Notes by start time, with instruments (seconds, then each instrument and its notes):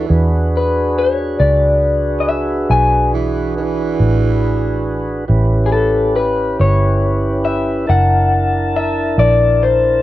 Already playing: tenor saxophone E3
0.09 fingered electric bass E2, tonewheel organ D4 F#4 G#4 B4
0.57 clean electric guitar B4
0.99 clean electric guitar C#5
1.40 fingered electric bass C#2, clean electric guitar D5
2.20 clean electric guitar D#5
2.28 clean electric guitar E5
2.70 fingered electric bass B1, clean electric guitar G#5
3.14 tenor saxophone E3
3.57 tenor saxophone E3
4.00 fingered electric bass A1
5.28 fingered electric bass A1, tonewheel organ C#4 E4 G4 B4
5.66 clean electric guitar G#4
5.72 clean electric guitar A4
6.16 clean electric guitar B4
6.60 fingered electric bass G1, clean electric guitar C#5
7.45 clean electric guitar E5
7.86 fingered electric bass F#1, tonewheel organ D4 E4 A#4 A5, clean electric guitar F#5
8.76 clean electric guitar E5
9.18 fingered electric bass A#1, clean electric guitar D5
9.63 clean electric guitar C5